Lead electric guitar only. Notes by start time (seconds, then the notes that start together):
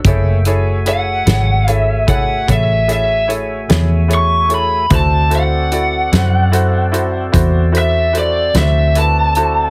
0.89 F#5
1.72 E5
2.10 F#5
2.52 E5
2.92 E5
4.14 C#6
4.55 B5
4.95 A5
5.35 F#5
7.78 E5
8.19 D5
8.58 E5
8.99 A5